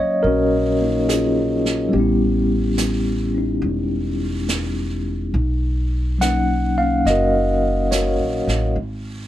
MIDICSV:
0, 0, Header, 1, 4, 480
1, 0, Start_track
1, 0, Tempo, 851064
1, 1088, Time_signature, 4, 2, 24, 8
1, 5232, End_track
2, 0, Start_track
2, 0, Title_t, "Tine electric piano"
2, 0, Program_c, 0, 4
2, 0, Control_c, 0, 64, 127
2, 0, Note_on_c, 0, 54, 51
2, 0, Note_on_c, 0, 58, 43
2, 0, Note_on_c, 0, 61, 43
2, 0, Note_on_c, 0, 73, 77
2, 0, Note_on_c, 0, 75, 86
2, 0, Note_on_c, 0, 77, 56
2, 125, Note_off_c, 0, 73, 0
2, 128, Note_on_c, 0, 70, 69
2, 146, Note_off_c, 0, 61, 0
2, 153, Note_on_c, 0, 61, 53
2, 153, Note_on_c, 0, 66, 52
2, 451, Note_off_c, 0, 58, 0
2, 458, Note_on_c, 0, 58, 38
2, 475, Note_on_c, 0, 63, 37
2, 615, Note_on_c, 0, 68, 62
2, 624, Note_off_c, 0, 70, 0
2, 637, Note_off_c, 0, 61, 0
2, 642, Note_on_c, 0, 65, 49
2, 644, Note_on_c, 0, 61, 46
2, 1064, Note_on_c, 0, 55, 46
2, 1067, Note_off_c, 0, 68, 0
2, 1074, Note_off_c, 0, 66, 0
2, 1080, Note_off_c, 0, 65, 0
2, 1081, Note_off_c, 0, 61, 0
2, 1084, Note_on_c, 0, 59, 43
2, 1085, Note_off_c, 0, 58, 0
2, 1086, Note_off_c, 0, 54, 0
2, 1091, Note_off_c, 0, 77, 0
2, 1093, Note_off_c, 0, 63, 0
2, 1093, Note_on_c, 0, 67, 52
2, 1095, Note_off_c, 0, 75, 0
2, 1095, Control_c, 0, 64, 0
2, 1103, Note_on_c, 0, 61, 43
2, 1110, Note_off_c, 0, 59, 0
2, 1117, Note_on_c, 0, 59, 39
2, 1127, Note_on_c, 0, 64, 53
2, 1189, Control_c, 0, 64, 127
2, 1874, Note_off_c, 0, 67, 0
2, 1881, Note_off_c, 0, 61, 0
2, 1888, Note_on_c, 0, 61, 33
2, 1906, Note_on_c, 0, 63, 38
2, 2035, Note_off_c, 0, 59, 0
2, 3003, Note_off_c, 0, 55, 0
2, 3011, Note_off_c, 0, 61, 0
2, 3020, Note_off_c, 0, 63, 0
2, 3023, Control_c, 0, 64, 0
2, 3034, Note_off_c, 0, 64, 0
2, 3104, Control_c, 0, 64, 127
2, 3488, Note_on_c, 0, 54, 36
2, 3498, Note_on_c, 0, 58, 35
2, 3504, Note_on_c, 0, 78, 80
2, 3511, Note_on_c, 0, 61, 35
2, 3515, Note_on_c, 0, 63, 42
2, 3823, Note_on_c, 0, 77, 71
2, 3826, Note_off_c, 0, 58, 0
2, 3833, Note_on_c, 0, 58, 33
2, 3842, Note_off_c, 0, 61, 0
2, 3845, Note_off_c, 0, 78, 0
2, 3849, Note_on_c, 0, 61, 41
2, 3982, Note_off_c, 0, 77, 0
2, 3986, Note_on_c, 0, 75, 73
2, 4003, Note_on_c, 0, 66, 43
2, 4006, Note_on_c, 0, 70, 46
2, 4440, Note_off_c, 0, 75, 0
2, 4463, Note_on_c, 0, 73, 56
2, 4477, Note_off_c, 0, 66, 0
2, 4477, Note_off_c, 0, 70, 0
2, 4484, Note_on_c, 0, 66, 39
2, 4484, Note_on_c, 0, 70, 35
2, 4917, Note_off_c, 0, 73, 0
2, 4928, Note_off_c, 0, 66, 0
2, 4928, Note_off_c, 0, 70, 0
2, 4933, Note_off_c, 0, 54, 0
2, 4939, Note_off_c, 0, 58, 0
2, 4947, Note_off_c, 0, 61, 0
2, 4947, Note_off_c, 0, 63, 0
2, 4947, Control_c, 0, 64, 0
2, 5039, Control_c, 0, 64, 127
2, 5232, End_track
3, 0, Start_track
3, 0, Title_t, "Upright bass"
3, 0, Program_c, 1, 32
3, 135, Note_on_c, 1, 34, 59
3, 1065, Note_off_c, 1, 34, 0
3, 1089, Note_on_c, 1, 33, 67
3, 2021, Note_off_c, 1, 33, 0
3, 2040, Note_on_c, 1, 28, 66
3, 2990, Note_off_c, 1, 28, 0
3, 3011, Note_on_c, 1, 35, 67
3, 3957, Note_off_c, 1, 35, 0
3, 3978, Note_on_c, 1, 30, 58
3, 4597, Note_off_c, 1, 30, 0
3, 4620, Note_on_c, 1, 34, 44
3, 4769, Note_off_c, 1, 34, 0
3, 4778, Note_on_c, 1, 33, 55
3, 4927, Note_off_c, 1, 33, 0
3, 4940, Note_on_c, 1, 32, 58
3, 5232, Note_off_c, 1, 32, 0
3, 5232, End_track
4, 0, Start_track
4, 0, Title_t, "Drums"
4, 139, Note_on_c, 9, 25, 33
4, 615, Note_on_c, 9, 38, 33
4, 615, Note_on_c, 9, 44, 42
4, 671, Note_off_c, 9, 38, 0
4, 671, Note_off_c, 9, 44, 0
4, 934, Note_on_c, 9, 38, 22
4, 991, Note_off_c, 9, 38, 0
4, 1092, Note_off_c, 9, 25, 0
4, 1092, Note_on_c, 9, 25, 29
4, 1567, Note_on_c, 9, 38, 37
4, 1567, Note_on_c, 9, 44, 42
4, 1623, Note_off_c, 9, 38, 0
4, 1623, Note_off_c, 9, 44, 0
4, 2048, Note_off_c, 9, 25, 0
4, 2048, Note_on_c, 9, 25, 31
4, 2531, Note_on_c, 9, 38, 38
4, 2531, Note_on_c, 9, 44, 43
4, 2587, Note_off_c, 9, 38, 0
4, 2587, Note_off_c, 9, 44, 0
4, 3019, Note_off_c, 9, 25, 0
4, 3019, Note_on_c, 9, 25, 23
4, 3505, Note_on_c, 9, 38, 34
4, 3505, Note_on_c, 9, 44, 44
4, 3561, Note_off_c, 9, 38, 0
4, 3561, Note_off_c, 9, 44, 0
4, 3984, Note_off_c, 9, 25, 0
4, 3984, Note_on_c, 9, 25, 31
4, 3984, Note_on_c, 9, 38, 25
4, 4041, Note_off_c, 9, 38, 0
4, 4465, Note_on_c, 9, 38, 36
4, 4465, Note_on_c, 9, 44, 41
4, 4522, Note_off_c, 9, 38, 0
4, 4522, Note_off_c, 9, 44, 0
4, 4786, Note_on_c, 9, 38, 22
4, 4842, Note_off_c, 9, 38, 0
4, 4945, Note_off_c, 9, 25, 0
4, 4945, Note_on_c, 9, 25, 22
4, 5232, Note_off_c, 9, 25, 0
4, 5232, End_track
0, 0, End_of_file